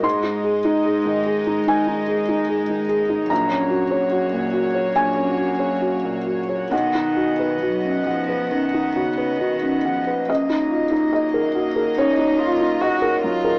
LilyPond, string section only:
\new Staff \with { instrumentName = "String section" } { \time 4/4 \key dis \minor \tempo 4 = 71 <gis dis' dis''>1 | <ais fis' cis''>1 | <b dis'' fis''>1 | <fis ais dis''>1 | }